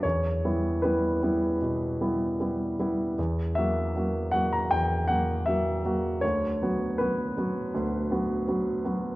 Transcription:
<<
  \new Staff \with { instrumentName = "Grand piano" } { \time 4/4 \key e \dorian \tempo 4 = 78 cis''4 b'2. | r8 e''4 fis''16 ais''16 g''8 fis''8 e''4 | cis''4 b'2. | }
  \new Staff \with { instrumentName = "Grand piano" } { \time 4/4 \key e \dorian e,8 <g b e'>8 <g b e'>8 <g b e'>8 b,8 <g b e'>8 <g b e'>8 <g b e'>8 | e,8 <fis ais fis'>8 <fis ais fis'>8 <fis ais fis'>8 e,8 <fis ais fis'>8 <fis ais fis'>8 <fis ais fis'>8 | d,8 <fis b fis'>8 <fis b fis'>8 <fis b fis'>8 d,8 <fis b fis'>8 <fis b fis'>8 <fis b fis'>8 | }
>>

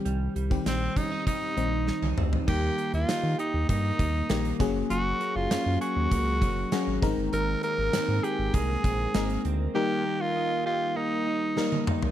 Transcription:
<<
  \new Staff \with { instrumentName = "Tenor saxophone" } { \time 4/4 \key ees \mixolydian \tempo 4 = 99 r4 c'8 ees'8 ees'4. r8 | g'8. f'8. ees'8 ees'4. r8 | ges'8. f'8. ges'2 r8 | bes'8 bes'4 g'8 aes'4. r8 |
g'8. f'8. f'8 ees'4. r8 | }
  \new Staff \with { instrumentName = "FM electric piano" } { \time 4/4 \key ees \mixolydian r1 | r1 | r2. ges''8 bes''8 | r1 |
r1 | }
  \new Staff \with { instrumentName = "FM electric piano" } { \time 4/4 \key ees \mixolydian <ees g c' g'>8 r16 <ees g c' g'>4 r8. <ees g c' ees'>4 r8 | <ees g bes g'>4~ <ees g bes g'>16 r4. r16 <ees g bes g'>8 <ges bes des' aes'>8~ | <ges bes des' aes'>4 r2 <ges bes des' aes'>8 <aes c' ees' bes'>8~ | <aes c' ees' bes'>4 r2 <aes c' ees' bes'>8. r16 |
<g bes ees' bes'>4~ <g bes ees' bes'>16 r4. r16 <g bes ees' bes'>8. r16 | }
  \new Staff \with { instrumentName = "Clean electric guitar" } { \time 4/4 \key ees \mixolydian g8 g8 c'8 des'16 ees'16 g8 c'8 ees'8 c'8 | bes8 bes8 ees'8 g'8 bes8 ees'8 bes8 ges8 | ges8 bes8 des'8 aes'8 bes8 des'8 bes8 ees8 | ees8 bes8 c'8 aes'8 bes8 c'8 bes8 c'8 |
ees8 bes8 ees'8 g'8 bes8 ees'8 bes8 ees'8 | }
  \new Staff \with { instrumentName = "Analog synth bass" } { \clef bass \time 4/4 \key ees \mixolydian c,8 c,8 bes,,8 r4 bes,,8. c,16 d,8 | ees,8 r16 ees,16 ees16 ees16 r16 ees,16 g,8 ees,8 bes,,8 ges,,8 | ges,,8 r16 ges,,16 ges,16 ges,16 r16 ees,16 des,8 ges,,8 r16 aes,,16 aes,,16 g,,16 | aes,,8 r16 aes,,16 aes,16 aes,16 r16 aes,,16 c,8 bes,,8 aes,,8 d,8 |
r1 | }
  \new DrumStaff \with { instrumentName = "Drums" } \drummode { \time 4/4 hh8 hh16 bd16 <hh sn>8 <hh bd>8 <hh bd>8 hh8 sn16 tommh16 toml16 tomfh16 | <cymc bd>8 hh16 hh16 <hh sn>8 hh8 <hh bd>8 <hh bd>8 <hh sn>16 hh16 <hh bd>8 | hh8 hh8 <hh sn>8 hh8 <hh bd>8 <hh bd>8 <hh sn>8 <hh bd>8 | hh8 hh8 <hh sn>8 hh8 <hh bd>8 <hh bd>8 <hh sn>16 hh16 hh8 |
r4 r4 r4 sn16 tommh16 toml16 tomfh16 | }
>>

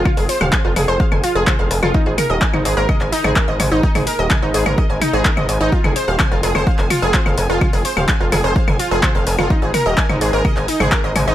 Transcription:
<<
  \new Staff \with { instrumentName = "Synth pluck" } { \time 4/4 \key f \minor \tempo 4 = 127 <f' f''>16 <aes' aes''>16 <c'' c'''>16 <f'' f'''>16 <aes'' aes'''>16 <f' f''>16 <aes' aes''>16 <c'' c'''>16 <f'' f'''>16 <aes'' aes'''>16 <f' f''>16 <aes' aes''>16 <c'' c'''>16 <f'' f'''>16 <aes'' aes'''>16 <f' f''>16 | <ees' ees''>16 <aes' aes''>16 <bes' bes''>16 <ees'' ees'''>16 <aes'' aes'''>16 <ees' ees''>16 <aes' aes''>16 <bes' bes''>16 <ees'' ees'''>16 <aes'' aes'''>16 <ees' ees''>16 <aes' aes''>16 <bes' bes''>16 <ees'' ees'''>16 <aes'' aes'''>16 <ees' ees''>16 | <ees' ees''>16 <aes' aes''>16 <bes' bes''>16 <ees'' ees'''>16 <aes'' aes'''>16 <ees' ees''>16 <aes' aes''>16 <bes' bes''>16 <ees'' ees'''>16 <aes'' aes'''>16 <ees' ees''>16 <aes' aes''>16 bes'16 <ees'' ees'''>16 <aes'' aes'''>16 <ees' ees''>16 | f'16 <aes' aes''>16 <c'' c'''>16 <f'' f'''>16 <aes'' aes'''>16 <f' f''>16 <aes' aes''>16 <c'' c'''>16 <f'' f'''>16 <aes'' aes'''>16 <f' f''>16 <aes' aes''>16 <c'' c'''>16 <f'' f'''>16 <aes'' aes'''>16 <f' f''>16 |
<f' f''>16 <aes' aes''>16 <c'' c'''>16 <f'' f'''>16 <aes'' aes'''>16 <f' f''>16 <aes' aes''>16 <c'' c'''>16 <f'' f'''>16 <aes'' aes'''>16 <f' f''>16 <aes' aes''>16 <c'' c'''>16 <f'' f'''>16 <aes'' aes'''>16 <f' f''>16 | <ees' ees''>16 <aes' aes''>16 <bes' bes''>16 <ees'' ees'''>16 <aes'' aes'''>16 <ees' ees''>16 <aes' aes''>16 <bes' bes''>16 <ees'' ees'''>16 <aes'' aes'''>16 <ees' ees''>16 <aes' aes''>16 <bes' bes''>16 <ees'' ees'''>16 <aes'' aes'''>16 <ees' ees''>16 | }
  \new Staff \with { instrumentName = "Analog synth bass" } { \clef bass \time 4/4 \key f \minor r16 f,,16 r16 ees,,16 r16 f,,16 f,,16 f,,16 r16 f,,16 r16 f,,16 r16 f,,16 f,,16 f,,16 | r16 aes,,16 r16 ees,,16 r16 aes,,16 aes,,16 aes,,16 r16 aes,,16 r16 aes,,16 r16 aes,,16 aes,,16 aes,,16 | r16 aes,,16 r16 ees,,16 r16 aes,,16 aes,,16 aes,,16 r16 aes,,16 r16 aes,,16 r16 aes,,16 aes,,16 aes,,16 | r16 f,,16 r16 ees,,16 r16 f,,16 f,,16 f,,16 r16 f,,16 r16 f,,16 r16 f,,16 f,,16 f,,16 |
r16 f,,16 r16 ees,,16 r16 f,,16 f,,16 f,,16 r16 f,,16 r16 f,,16 r16 f,,16 f,,16 f,,16 | r16 aes,,16 r16 ees,,16 r16 aes,,16 aes,,16 aes,,16 r16 aes,,16 r16 aes,,16 r16 aes,,16 aes,,16 aes,,16 | }
  \new DrumStaff \with { instrumentName = "Drums" } \drummode { \time 4/4 <cl bd toml>16 hho16 hho16 <cl toml>16 <hc bd>8 <cl hho toml>8 bd16 <cl toml>16 hho8 <hc cl bd toml>8 hho16 <cl toml>16 | bd8 <cl hho toml>8 <hc bd>16 <cl toml>16 hho8 <cl bd toml>16 hc16 hho16 <cl toml>16 <hc bd>8 <cl hho toml>8 | bd16 <cl hho toml>16 hho8 <hc cl bd toml>8 hho16 <cl toml>16 bd8 <cl hho toml>8 <hc bd>16 <cl toml>16 hho8 | bd16 <cl toml>16 hho8 <hc cl bd toml>8 hho16 <cl toml>16 bd16 hc16 <cl hho toml>8 <hc bd>16 <cl toml>16 hho8 |
<cl bd toml>16 hho16 hho16 <cl toml>16 <hc bd>8 <cl hho toml>8 bd16 <cl toml>16 hho8 <hc cl bd toml>8 hho16 <cl toml>16 | bd8 <cl hho toml>8 <hc bd>16 <cl toml>16 hho8 <cl bd toml>16 hc16 hho16 <cl toml>16 <hc bd>8 <cl hho toml>8 | }
>>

